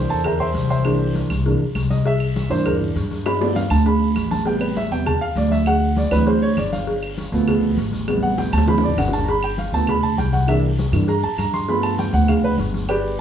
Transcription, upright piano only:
0.00 0.81 E3 medium
0.00 0.82 A#3 medium
0.00 0.82 D4 medium
0.00 0.22 C5 medium
0.00 0.22 E5 medium
0.00 0.22 G5 medium
0.00 0.22 C6 loud
0.10 0.25 A4 medium
0.10 0.25 A5 loud
0.25 0.40 A#4 medium
0.25 0.39 E5 medium
0.25 0.39 G5 medium
0.25 0.40 A#5 medium
0.40 0.68 C5 medium
0.40 0.68 E5 medium
0.40 0.68 G5 medium
0.40 0.68 C6 loud
0.70 1.12 C5 medium
0.70 1.12 E5 medium
0.70 1.12 G5 medium
0.70 1.12 C6 medium
0.85 1.28 E3 medium
0.85 1.28 A#3 soft
0.85 1.29 D4 medium
1.46 1.59 E3 medium
1.46 1.59 A#3 medium
1.46 1.60 D4 medium
1.90 2.05 D#5 medium
2.06 2.48 E5 loud
2.50 2.93 E3 medium
2.50 2.93 A#3 medium
2.50 2.94 D4 medium
2.50 2.65 C5 loud
2.66 2.75 A#4 medium
3.26 3.40 B5 loud
3.40 3.61 F3 medium
3.40 3.61 A3 medium
3.40 3.61 B3 medium
3.40 3.56 D5 medium
3.56 3.71 F5 loud
3.71 3.86 A5 loud
3.86 4.28 B5 loud
4.31 4.46 A5 loud
4.45 4.66 C3 medium
4.45 4.67 G3 medium
4.45 4.67 B3 medium
4.45 4.61 G5 medium
4.61 4.76 B4 medium
4.77 4.91 E5 medium
4.91 5.05 C3 medium
4.91 5.05 G3 soft
4.91 5.05 B3 medium
4.91 5.06 G5 loud
5.07 5.21 A5 loud
5.21 5.36 F5 loud
5.37 5.52 D5 medium
5.52 5.66 E5 medium
5.67 5.95 F#5 loud
5.97 6.12 D5 medium
6.11 6.32 E3 medium
6.11 6.32 F#3 medium
6.11 6.32 C4 medium
6.11 6.27 B4 loud
6.27 6.42 C5 medium
6.42 6.57 C#5 loud
6.58 6.72 D5 medium
6.72 7.44 F5 medium
7.32 7.75 F3 medium
7.32 7.76 A3 medium
7.32 7.76 B3 medium
8.08 8.51 C3 medium
8.08 8.51 G3 medium
8.08 8.51 B3 medium
8.23 8.37 F#5 loud
8.38 8.53 G5 medium
8.53 8.68 A5 loud
8.67 8.88 E3 medium
8.67 8.88 F#3 medium
8.67 8.88 C4 medium
8.67 8.83 B5 loud
8.84 8.98 D5 medium
8.99 9.13 F#5 medium
9.13 9.28 A5 loud
9.24 9.26 A#5 medium
9.29 9.43 B5 loud
9.44 9.58 G5 loud
9.59 9.73 F5 medium
9.73 9.93 F3 medium
9.73 9.94 A3 medium
9.73 9.94 B3 medium
9.73 9.88 A5 loud
9.89 10.03 B5 loud
10.03 10.18 A5 loud
10.18 10.33 G5 medium
10.33 10.48 F#5 medium
10.47 10.68 E3 medium
10.47 10.68 A#3 medium
10.47 10.69 D4 medium
10.47 10.58 E5 medium
10.93 11.07 E3 medium
10.93 11.07 A#3 soft
10.93 11.07 D4 medium
11.09 11.23 A#5 loud
11.23 11.38 A5 loud
11.39 11.53 A#5 loud
11.54 11.68 C6 loud
11.68 12.85 F3 medium
11.68 12.85 A3 medium
11.68 12.86 B3 medium
11.68 11.84 B5 loud
11.83 11.98 A5 medium
11.99 12.14 G5 loud
12.14 12.28 F#5 loud
12.29 12.44 F5 medium
12.44 12.53 B4 loud
12.89 13.17 G4 medium
12.89 13.17 B4 medium
12.89 13.17 D5 medium
12.89 13.17 G5 loud

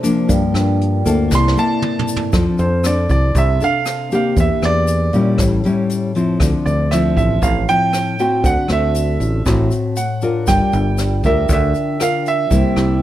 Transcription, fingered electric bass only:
0.29 0.41 G2 medium
0.54 1.02 G2 loud
1.06 1.30 D2 medium
1.32 1.55 C2 loud
2.33 2.45 F2 medium
2.59 3.06 F2 medium
3.10 3.33 C2 loud
3.35 3.59 C2 medium
4.37 4.49 E2 medium
4.62 5.10 E2 loud
5.13 5.37 A#2 medium
5.39 5.62 A1 loud
6.40 6.52 D2 loud
6.66 7.13 D2 loud
7.16 7.40 A1 medium
7.42 7.66 A1 loud
8.44 8.56 D2 loud
8.70 9.17 D2 loud
9.20 9.44 A1 medium
9.46 9.70 A1 loud
10.48 10.60 G1 medium
10.73 11.20 G1 loud
11.24 11.47 D2 medium
11.49 11.73 D2 medium
12.51 12.63 C2 medium
12.77 13.02 C2 loud

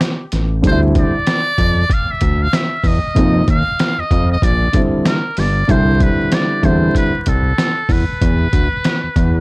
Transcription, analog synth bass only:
0.33 0.66 A1 medium
0.64 1.05 D2 loud
1.58 1.85 F2 loud
2.22 2.48 D2 loud
2.84 2.99 E2 medium
3.17 3.43 F2 loud
3.48 3.63 D#2 medium
3.98 4.03 F2 soft
4.11 4.37 F2 loud
4.42 4.69 A#1 loud
5.38 5.64 G1 medium
5.69 6.10 C2 loud
6.64 6.90 E2 medium
7.27 7.53 C2 loud
7.89 8.05 E2 medium
8.22 8.48 E2 loud
8.53 8.68 D2 medium
9.04 9.09 E2 medium
9.16 9.40 E2 loud

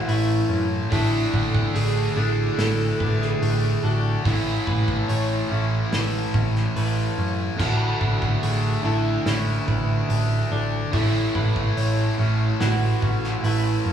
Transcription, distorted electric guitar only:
0.00 0.90 A2 medium
0.00 0.92 E3 medium
0.00 0.93 A3 loud
0.90 2.13 D3 medium
0.90 2.17 A3 loud
0.90 2.14 D4 loud
2.15 4.23 D3 medium
2.15 4.25 A3 loud
2.15 4.22 D4 medium
4.23 5.52 A2 medium
4.23 5.51 E3 medium
4.23 5.48 A3 medium
5.49 7.57 A2 medium
5.49 7.59 E3 medium
5.49 7.59 A3 loud
7.57 8.81 D3 medium
7.57 8.84 A3 medium
7.57 8.82 D4 medium
8.83 10.92 D3 medium
8.83 10.93 A3 medium
8.83 10.90 D4 loud
10.92 12.21 A2 medium
10.92 12.19 E3 medium
10.92 12.17 A3 medium
12.18 13.93 A2 medium
12.18 13.93 E3 medium
12.18 13.93 A3 loud

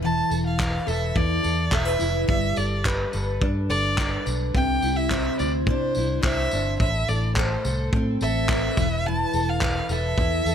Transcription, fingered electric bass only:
0.00 0.21 E1 medium
0.31 0.78 E1 medium
0.88 1.11 E1 medium
1.16 1.39 E2 loud
1.45 1.68 E2 loud
1.72 1.95 E1 medium
2.01 2.24 F1 medium
2.29 2.52 G1 loud
2.58 3.04 G1 medium
3.14 3.37 G1 medium
3.42 3.71 G2 loud
3.70 4.16 G1 medium
4.27 4.50 B1 medium
4.55 4.78 C2 medium
4.83 5.29 C2 medium
5.40 5.68 D2 medium
5.67 5.98 C3 loud
5.97 6.19 C2 medium
6.23 6.47 C2 loud
6.53 6.76 G1 medium
6.80 7.03 A1 loud
7.09 7.55 A1 medium
7.65 7.88 C2 medium
7.93 8.16 A2 loud
8.21 8.67 A1 loud
8.77 9.24 E1 loud
9.34 9.80 E1 medium
9.89 10.13 E1 medium
10.17 10.41 E2 loud
10.46 10.55 E2 medium

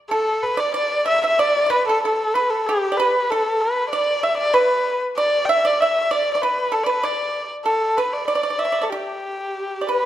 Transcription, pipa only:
0.11 0.56 A4 medium
0.57 0.73 D5 medium
0.74 1.04 D5 medium
1.06 1.21 E5 medium
1.24 1.39 E5 medium
1.39 1.65 D5 medium
1.66 1.86 B4 medium
1.66 1.71 D5 soft
1.89 2.03 A4 medium
2.05 2.34 A4 medium
2.35 2.65 B4 medium
2.69 2.91 G4 medium
2.92 2.99 D5 medium
3.00 3.28 B4 medium
3.32 3.69 A4 medium
3.69 3.89 G4 medium
3.93 4.22 D5 medium
4.23 4.52 E5 medium
4.54 4.98 B4 medium
5.18 5.46 D5 medium
5.49 5.63 E5 medium
5.65 5.78 D5 medium
5.82 6.09 E5 medium
6.11 6.33 D5 medium
6.35 6.41 D5 soft
6.43 6.70 B4 medium
6.72 6.86 A4 medium
6.86 7.01 B4 medium
7.03 7.46 D5 medium
7.66 7.94 A4 medium
7.98 8.26 B4 medium
8.28 8.34 D5 medium
8.35 8.42 D5 soft
8.43 8.49 D5 medium
8.50 8.56 D5 soft
8.59 8.64 D5 soft
8.65 8.71 D5 soft
8.72 8.79 D5 medium
8.81 8.87 D5 soft
8.92 9.86 G4 medium
9.81 9.89 D5 soft
9.89 10.05 B4 medium

